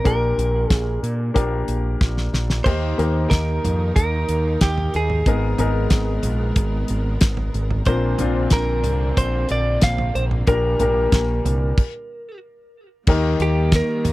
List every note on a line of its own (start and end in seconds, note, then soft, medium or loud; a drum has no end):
0.04 0.32 A#1 medium
0.04 0.99 A#2 medium
0.04 1.09 A#3 medium
0.04 1.09 D4 medium
0.04 1.10 G4 medium
0.04 1.10 A#4 medium
0.04 0.73 A#4 medium
0.04 kick medium
0.04 closed hi-hat medium
0.38 0.65 A#1 medium
0.38 closed hi-hat medium
0.70 0.97 A#1 medium
0.70 1.00 G#4 medium
0.70 kick loud
0.70 snare medium
0.70 closed hi-hat medium
1.03 1.30 A#2 medium
1.03 closed hi-hat medium
1.34 1.62 A#1 loud
1.34 2.39 A#3 medium
1.34 2.39 D4 medium
1.34 2.40 G4 medium
1.34 2.40 A#4 medium
1.34 kick medium
1.34 closed hi-hat medium
1.68 1.95 A#1 medium
1.68 closed hi-hat medium
2.01 2.28 A#1 medium
2.01 kick loud
2.01 snare medium
2.17 snare soft
2.33 2.60 A#1 medium
2.33 snare medium
2.50 snare medium
2.64 2.93 D#2 medium
2.64 3.60 D#3 medium
2.64 5.24 D#3 medium
2.64 2.92 A#3 medium
2.64 2.92 D#4 medium
2.64 5.24 D#4 medium
2.64 2.92 G4 medium
2.64 7.83 A#4 medium
2.64 2.92 A#4 medium
2.64 3.30 C5 medium
2.64 kick medium
2.64 crash medium
2.98 3.25 D#2 medium
2.98 4.02 A#3 medium
2.98 4.03 D#4 medium
2.98 4.03 G4 medium
2.98 4.03 A#4 medium
2.98 closed hi-hat medium
3.30 3.58 D#2 medium
3.30 3.95 A#4 medium
3.30 kick medium
3.30 snare medium
3.30 closed hi-hat medium
3.64 3.91 F2 medium
3.64 closed hi-hat medium
3.64 floor tom soft
3.96 4.23 D#2 medium
3.96 4.62 A#4 medium
3.96 kick medium
3.96 closed hi-hat medium
4.29 4.55 D#2 medium
4.29 closed hi-hat medium
4.61 4.88 D#2 medium
4.61 4.95 G4 medium
4.61 kick loud
4.61 snare loud
4.61 closed hi-hat medium
4.78 floor tom medium
4.94 5.21 D#2 medium
4.94 6.86 G#4 medium
4.94 closed hi-hat medium
5.10 floor tom medium
5.26 5.53 G#1 loud
5.26 6.20 G#2 medium
5.26 7.85 G#3 medium
5.26 5.53 B3 medium
5.26 7.85 B3 medium
5.26 5.53 D#4 medium
5.26 5.53 G#4 medium
5.26 5.53 A#4 medium
5.26 kick medium
5.26 closed hi-hat medium
5.58 5.86 G#1 medium
5.58 6.63 B3 medium
5.58 6.63 D#4 medium
5.58 6.63 G#4 medium
5.58 6.64 A#4 medium
5.58 closed hi-hat medium
5.58 floor tom medium
5.90 6.18 G#1 medium
5.90 kick loud
5.90 snare loud
5.90 closed hi-hat medium
6.23 6.51 A#1 medium
6.23 closed hi-hat medium
6.23 floor tom soft
6.56 6.83 G#1 loud
6.56 kick medium
6.56 closed hi-hat medium
6.88 7.16 G#1 medium
6.88 closed hi-hat medium
7.21 7.48 G#1 medium
7.21 kick loud
7.21 snare loud
7.21 closed hi-hat loud
7.37 floor tom medium
7.54 7.81 G#1 medium
7.54 closed hi-hat medium
7.71 floor tom medium
7.85 8.13 A#1 medium
7.85 8.81 A#2 medium
7.85 11.74 D3 medium
7.85 10.46 A#3 medium
7.85 8.13 C4 medium
7.85 10.46 C4 medium
7.85 8.13 D4 medium
7.85 8.13 F4 medium
7.85 8.14 A#4 medium
7.85 8.48 C5 loud
7.85 kick loud
7.85 closed hi-hat medium
8.18 8.46 A#1 medium
8.18 9.23 C4 medium
8.18 9.24 D4 medium
8.18 9.24 F4 medium
8.18 9.24 C5 medium
8.18 closed hi-hat medium
8.18 floor tom medium
8.50 8.85 A#1 medium
8.50 9.17 A#4 medium
8.50 kick loud
8.50 snare medium
8.50 closed hi-hat medium
8.84 9.11 C2 medium
8.84 closed hi-hat medium
8.84 floor tom medium
9.17 9.44 A#1 medium
9.17 9.48 C5 medium
9.17 kick medium
9.17 closed hi-hat medium
9.49 9.77 A#1 medium
9.49 9.81 D5 medium
9.49 closed hi-hat medium
9.81 10.09 A#1 loud
9.81 10.13 F5 medium
9.81 kick loud
9.81 snare loud
9.81 closed hi-hat loud
9.98 floor tom medium
10.15 10.42 A#1 medium
10.15 10.24 C5 medium
10.15 closed hi-hat medium
10.31 floor tom medium
10.47 10.74 A#1 loud
10.47 11.41 A#2 medium
10.47 11.77 G3 medium
10.47 10.73 A#3 medium
10.47 11.77 A#3 medium
10.47 10.73 D4 medium
10.47 10.74 G4 medium
10.47 12.39 A#4 medium
10.47 10.74 A#4 medium
10.47 kick loud
10.47 closed hi-hat medium
10.79 11.06 A#1 medium
10.79 11.78 A#3 medium
10.79 11.78 D4 medium
10.79 11.78 G4 medium
10.79 11.78 A#4 medium
10.79 closed hi-hat medium
10.79 floor tom medium
11.12 11.39 A#1 medium
11.12 kick loud
11.12 snare loud
11.12 closed hi-hat medium
11.45 11.71 C2 medium
11.45 closed hi-hat medium
11.45 floor tom medium
11.78 kick medium
11.78 crash medium
13.07 13.34 D#2 loud
13.07 14.13 D#3 medium
13.07 14.01 D#3 medium
13.07 14.13 G3 medium
13.07 14.13 A#3 medium
13.07 14.12 A#3 medium
13.07 14.12 D#4 medium
13.07 14.12 G4 medium
13.07 14.12 A#4 medium
13.07 kick loud
13.07 crash medium
13.40 13.80 D#2 loud
13.40 13.71 G4 medium
13.40 closed hi-hat medium
13.72 14.13 A#4 medium
13.72 kick loud
13.72 snare medium
13.72 closed hi-hat medium
14.05 14.13 D#2 medium
14.05 closed hi-hat medium
14.05 floor tom medium